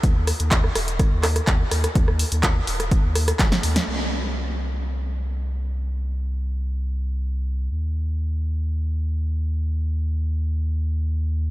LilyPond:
<<
  \new Staff \with { instrumentName = "Sub bass" } { \clef bass \time 4/4 \key ees \major \tempo 4 = 125 ees,8 r16 ees,8 r16 ees,,8 r16 ees,8 r16 ees,16 r16 ees,16 r16 | ees,8 r16 ees,8 r16 ees,,8 r16 ees,8 r16 ees,,16 r16 ees,16 r16 | c,1~ | c,1 |
ees,1~ | ees,1 | }
  \new DrumStaff \with { instrumentName = "Drums" } \drummode { \time 4/4 <hh bd>8 <hho ss>16 hh16 <hc hh bd>16 ss16 <hho ss>16 hh16 <hh bd ss>8 <hc hho ss>16 <hh ss>16 <hc hh bd>8 <hho ss>16 <hh ss>16 | <hh bd>16 ss16 hho16 hh16 <hc hh bd ss>8 hho16 <hh ss>16 <hh bd>8 <hho ss>16 <hh ss>16 <hc hh bd sn>16 sn16 hho16 <hh sn>16 | r4 r4 r4 r4 | r4 r4 r4 r4 |
r4 r4 r4 r4 | r4 r4 r4 r4 | }
>>